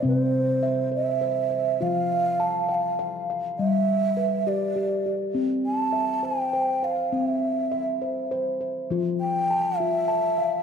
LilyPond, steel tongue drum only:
<<
  \new Staff \with { instrumentName = "Steel tongue drum" } { \time 6/8 \key f \lydian \tempo 4. = 68 << { c''4 r8 c''4 c''8~ | c''8 r4 f''4 f''8~ | f''8 r4 g'4 g'8~ | g'8 r4 c''4 c''8~ |
c''4 r8 c''4 c''8~ | c''8 r4 f'4 f''8 | } \\ { c'4 e''4 c''4 | f'4 a''4 f''4 | g4 b'4 g'4 | c'4 e''4 c''4 |
c'4 e''4 c''4 | f'4 a''4 a''4 | } >> }
  \new Staff \with { instrumentName = "Steel tongue drum" } { \clef bass \time 6/8 \key f \lydian c2. | f2. | r2. | r2. |
r2. | f2. | }
>>